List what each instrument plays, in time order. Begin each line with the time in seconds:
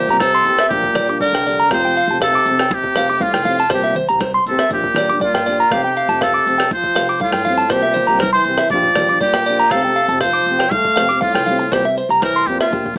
Already playing: trombone A#2, muted trumpet G4
0.09 upright bass C2, nylon-string guitar A#3 C4 G4, clean electric guitar A#5, closed hi-hat
0.20 trombone C3, muted trumpet A4, clean electric guitar C5, kick, cross-stick, closed hi-hat, muted conga, high conga
0.35 clean electric guitar C6
0.44 upright bass F2, nylon-string guitar E3 A#3, closed hi-hat
0.48 nylon-string guitar C4 G4
0.59 clean electric guitar E5, cross-stick, closed hi-hat
0.69 upright bass A#1, trombone A#2, nylon-string guitar F3 A#3 D4, muted trumpet G4, kick, closed hi-hat, muted conga
0.73 nylon-string guitar G4
0.84 kick
0.94 upright bass A#1, nylon-string guitar F3 D4, clean electric guitar D5, cross-stick, closed hi-hat, high conga, low conga
0.99 nylon-string guitar G4
1.08 nylon-string guitar A#3 D4 G4, clean electric guitar D6, closed hi-hat
1.20 trombone D3, muted trumpet A#4, clean electric guitar D5, kick, closed hi-hat, high conga
1.32 upright bass C2, clean electric guitar G5, cross-stick
1.45 nylon-string guitar F3 A#3 D4 G4, clean electric guitar D5, closed hi-hat
1.59 clean electric guitar A#5, closed hi-hat
1.70 upright bass F1, nylon-string guitar F3 A3 C4 G4, trombone F3, muted trumpet C5, muted clean electric guitar stroke, kick, cross-stick, closed hi-hat, muted conga
1.83 nylon-string guitar A3 C4 G4, clean electric guitar G5
1.96 clean electric guitar F5, closed hi-hat
2.08 upright bass F1, nylon-string guitar C4 G4, clean electric guitar A5, closed hi-hat
2.13 nylon-string guitar A3
2.19 trombone C3, clean electric guitar F5, kick, cross-stick, closed hi-hat, muted conga
2.23 muted trumpet A4
2.35 clean electric guitar D6
2.46 upright bass F1, nylon-string guitar F3 C4, muted nylon-string guitar stroke, closed hi-hat
2.50 nylon-string guitar G4
2.59 clean electric guitar G5, cross-stick, closed hi-hat
2.71 trombone C3, muted trumpet G4, kick, closed hi-hat, muted conga, high conga
2.84 kick
2.96 upright bass F1, nylon-string guitar F3 A3 G4, clean electric guitar F5, muted nylon-string guitar stroke, cross-stick, closed hi-hat, muted conga
3.09 nylon-string guitar C4 G4, clean electric guitar D6, closed hi-hat
3.13 nylon-string guitar A3
3.20 muted trumpet F4, clean electric guitar F5, kick, closed hi-hat, high conga
3.25 trombone A2
3.34 upright bass F1, clean electric guitar G5, cross-stick
3.45 nylon-string guitar F3 A3 C4 G4, clean electric guitar F5, closed hi-hat, high conga
3.59 clean electric guitar A5, closed hi-hat
3.70 upright bass C2, nylon-string guitar E3 A#3 C4 G4, muted trumpet G4, clean electric guitar C5, kick, cross-stick, closed hi-hat, muted conga
3.75 trombone A#2
3.84 nylon-string guitar A#3 C4 G4, clean electric guitar E5
3.95 clean electric guitar C5, closed hi-hat, low conga
4.09 upright bass C2, nylon-string guitar G4, clean electric guitar A#5, closed hi-hat
4.13 nylon-string guitar A#3
4.20 clean electric guitar C5, kick, cross-stick, closed hi-hat, muted conga, high conga
4.34 clean electric guitar C6
4.46 upright bass A1, nylon-string guitar E3 A#3 C4, muted trumpet A4, closed hi-hat
4.50 trombone C3, nylon-string guitar G4
4.59 clean electric guitar E5, cross-stick, closed hi-hat
4.70 upright bass A#1, nylon-string guitar F3 A#3 D4 G4, muted trumpet G4, kick, closed hi-hat, muted conga
4.75 trombone A#2
4.84 kick
4.94 upright bass A#1, nylon-string guitar F3 A#3 D4 G4, clean electric guitar D5, cross-stick, closed hi-hat, muted conga, high conga, low conga
5.09 nylon-string guitar D4 G4, clean electric guitar D6, closed hi-hat
5.13 nylon-string guitar A#3
5.20 trombone A#2, muted trumpet F4, clean electric guitar D5, kick, closed hi-hat, high conga
5.34 upright bass G1, clean electric guitar G5, cross-stick
5.46 nylon-string guitar F3 A#3 D4 G4, clean electric guitar D5, closed hi-hat
5.60 clean electric guitar A#5, closed hi-hat
5.71 upright bass F1, trombone C3, nylon-string guitar F3 A3 C4 G4, muted trumpet G4, clean electric guitar F5, kick, cross-stick, closed hi-hat, muted conga
5.83 nylon-string guitar A3 C4 G4, clean electric guitar G5
5.96 clean electric guitar F5, closed hi-hat
6.09 upright bass F1, nylon-string guitar A3 C4 G4, clean electric guitar A5, closed hi-hat
6.20 trombone C3, muted trumpet A4, clean electric guitar F5, kick, cross-stick, closed hi-hat, muted conga
6.34 clean electric guitar D6
6.46 upright bass F1, nylon-string guitar F3 A3 C4 G4, closed hi-hat
6.58 clean electric guitar G5, cross-stick, closed hi-hat
6.71 trombone F3, muted trumpet C5, kick, closed hi-hat, muted conga, high conga
6.84 kick
6.95 upright bass F1, nylon-string guitar F3 A3 G4, clean electric guitar F5, cross-stick, closed hi-hat, muted conga
7.09 clean electric guitar D6, muted nylon-string guitar stroke, closed hi-hat
7.20 trombone A2, muted trumpet F4, clean electric guitar F5, kick, closed hi-hat, high conga
7.32 upright bass G2, clean electric guitar G5, cross-stick
7.45 nylon-string guitar F3 A3, clean electric guitar F5, closed hi-hat, high conga
7.49 nylon-string guitar C4 G4
7.58 clean electric guitar A5, closed hi-hat
7.70 upright bass C2, trombone A#2, nylon-string guitar E3 A#3 C4 G4, muted trumpet G4, clean electric guitar C5, kick, cross-stick, closed hi-hat, muted conga
7.83 nylon-string guitar G4, clean electric guitar E5
7.94 clean electric guitar C5, closed hi-hat, low conga
8.07 upright bass C2, nylon-string guitar G4, clean electric guitar A#5, closed hi-hat
8.12 nylon-string guitar A#3 C4
8.19 muted trumpet A#4, clean electric guitar C5, kick, cross-stick, closed hi-hat, muted conga, high conga
8.23 trombone E3
8.33 trombone E3, muted trumpet C5, clean electric guitar C6
8.45 upright bass C2, nylon-string guitar E3 A#3 C4, closed hi-hat
8.49 nylon-string guitar G4
8.58 clean electric guitar E5, cross-stick, closed hi-hat
8.70 upright bass A#1, trombone F3, nylon-string guitar F3 A#3 D4, muted trumpet D5, kick, closed hi-hat, muted conga
8.74 nylon-string guitar G4
8.83 kick
8.95 upright bass A#1, nylon-string guitar F3 A#3 G4, clean electric guitar D5, cross-stick, closed hi-hat, muted conga, high conga, low conga
9.09 nylon-string guitar A#3 D4 G4, clean electric guitar D6, closed hi-hat
9.21 trombone A#2, muted trumpet G4, clean electric guitar D5, kick, closed hi-hat, high conga
9.34 upright bass A#1, clean electric guitar G5, cross-stick
9.45 nylon-string guitar F3 A#3, clean electric guitar D5, closed hi-hat
9.49 nylon-string guitar D4 G4
9.59 clean electric guitar A#5, closed hi-hat
9.71 upright bass F1, trombone C3, nylon-string guitar F3 A3 C4 G4, muted trumpet A4, clean electric guitar F5, kick, cross-stick, closed hi-hat, muted conga
9.85 nylon-string guitar A3 C4 G4, clean electric guitar G5
9.96 clean electric guitar F5, closed hi-hat
10.08 upright bass F1, nylon-string guitar C4 G4, clean electric guitar A5, closed hi-hat
10.13 nylon-string guitar A3
10.21 trombone F3, muted trumpet C5, clean electric guitar F5, kick, cross-stick, closed hi-hat, muted conga
10.33 clean electric guitar D6
10.46 upright bass F1, nylon-string guitar F3 A3 C4, closed hi-hat
10.51 nylon-string guitar G4
10.59 clean electric guitar G5, cross-stick, closed hi-hat
10.70 trombone A3, muted trumpet F5, kick, closed hi-hat, muted conga, high conga
10.85 kick
10.96 upright bass F1, nylon-string guitar F3 A3 C4, clean electric guitar F5, cross-stick, closed hi-hat, muted conga
11.01 nylon-string guitar G4
11.09 nylon-string guitar G4, clean electric guitar D6, closed hi-hat
11.13 nylon-string guitar A3 C4
11.21 trombone A2, muted trumpet F4, clean electric guitar F5, kick, closed hi-hat, high conga
11.34 upright bass F1, clean electric guitar G5, cross-stick
11.46 nylon-string guitar A3 C4, clean electric guitar F5, muted nylon-string guitar stroke, closed hi-hat, high conga
11.51 nylon-string guitar G4
11.59 muted clean electric guitar stroke, closed hi-hat
11.71 upright bass C2, trombone A#2, nylon-string guitar E3 C4 G4, muted trumpet G4, clean electric guitar C5, muted nylon-string guitar stroke, kick, cross-stick, closed hi-hat, muted conga
11.84 nylon-string guitar A#3 C4 G4, clean electric guitar E5
11.98 clean electric guitar C5, closed hi-hat
12.09 upright bass C2, nylon-string guitar A#3 G4, clean electric guitar A#5, muted nylon-string guitar stroke, closed hi-hat
12.22 trombone E3, muted trumpet A#4, clean electric guitar C5, kick, cross-stick, closed hi-hat, muted conga, high conga
12.36 clean electric guitar C6
12.47 upright bass F2, trombone A#2, nylon-string guitar E3 A#3 C4 G4, muted trumpet G4, closed hi-hat
12.60 trombone A#2, muted trumpet F4, clean electric guitar E5, cross-stick, closed hi-hat
12.71 upright bass A#1, nylon-string guitar F3 A#3 D4 G4, kick, closed hi-hat, muted conga
12.86 kick